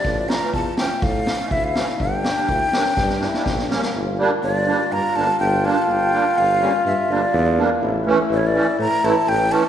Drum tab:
SD |o-oo--o-o-o---oo|--o---oooooooooo|----------------|----------------|
BD |o---o---o---o---|o---o---o---o---|----------------|----------------|

SD |----------------|
BD |----------------|